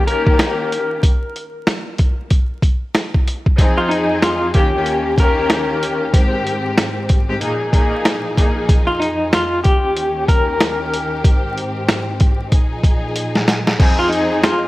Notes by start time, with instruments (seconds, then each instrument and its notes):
0.07 string section D#3 A#3 C#4 G4, clean electric guitar A#4, closed hi-hat
0.27 kick
0.39 snare, closed hi-hat
0.72 closed hi-hat
1.03 kick, closed hi-hat
1.36 closed hi-hat
1.67 snare, closed hi-hat
1.98 kick, closed hi-hat
2.30 kick, closed hi-hat
2.62 kick, closed hi-hat
2.95 snare, closed hi-hat
3.14 kick
3.27 closed hi-hat
3.46 kick
3.58 string section F2 F3 C4 D#4 G#4, kick, closed hi-hat
3.78 clean electric guitar F4
3.89 clean electric guitar D#4, closed hi-hat
4.22 clean electric guitar F4, snare, closed hi-hat
4.54 string section D#2 D#3 A#3 C#4 G4, clean electric guitar G4, kick, closed hi-hat
4.74 string section D#3 A#3 C#4 G4
4.86 closed hi-hat
5.18 string section D#3 A#3 C#4 G4, clean electric guitar A#4, kick, closed hi-hat
5.50 snare, closed hi-hat
5.83 closed hi-hat
6.13 string section G#2 G#3 C4 G4, kick, closed hi-hat
6.47 closed hi-hat
6.78 snare, closed hi-hat
7.09 kick, closed hi-hat
7.29 string section G#2 G#3 C4 G4
7.40 string section A#2 F3 A#3 D#4 G#4, closed hi-hat
7.73 string section A#2 A#3 D#4 G#4, kick, closed hi-hat
8.05 snare, closed hi-hat
8.37 string section A#2 A#3 D#4 G#4, kick, closed hi-hat
8.69 string section F2, kick, closed hi-hat
8.87 clean electric guitar F4
9.00 clean electric guitar D#4, closed hi-hat
9.33 clean electric guitar F4, snare, closed hi-hat
9.64 string section D#2 D#3 C#4 G4, clean electric guitar G4, kick, closed hi-hat
9.97 closed hi-hat
10.28 clean electric guitar A#4, kick, closed hi-hat
10.60 snare, closed hi-hat
10.94 closed hi-hat
11.24 string section G#2 C4, kick, closed hi-hat
11.57 closed hi-hat
11.88 snare, closed hi-hat
12.20 kick, closed hi-hat
12.52 string section A#2 F3 D#4 G#4, kick, closed hi-hat
12.84 kick, closed hi-hat
13.16 closed hi-hat
13.35 snare
13.48 snare, closed hi-hat
13.67 snare
13.79 string section F2 F3 C4 D#4 G#4, kick, crash
13.99 clean electric guitar F4
14.09 clean electric guitar D#4, closed hi-hat
14.43 clean electric guitar F4, snare, closed hi-hat